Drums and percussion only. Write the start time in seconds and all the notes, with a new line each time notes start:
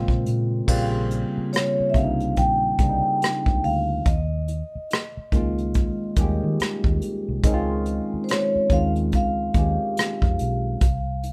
0.08 kick
0.26 closed hi-hat
0.68 kick, crash
1.11 closed hi-hat
1.53 cross-stick, closed hi-hat
1.94 kick, closed hi-hat
2.20 closed hi-hat
2.36 kick, closed hi-hat
2.78 kick, closed hi-hat
3.22 cross-stick, closed hi-hat
3.46 kick
3.64 open hi-hat
4.06 kick, closed hi-hat
4.48 closed hi-hat
4.91 cross-stick, closed hi-hat
5.32 kick, closed hi-hat
5.58 closed hi-hat
5.74 kick, closed hi-hat
6.16 kick, closed hi-hat
6.60 cross-stick, closed hi-hat
6.84 kick
7.02 closed hi-hat
7.43 kick, closed hi-hat
7.86 closed hi-hat
8.29 cross-stick, closed hi-hat
8.70 kick, closed hi-hat
8.96 closed hi-hat
9.12 kick, closed hi-hat
9.54 kick, closed hi-hat
9.97 cross-stick, closed hi-hat
10.22 kick
10.39 closed hi-hat
10.81 kick, closed hi-hat
11.23 closed hi-hat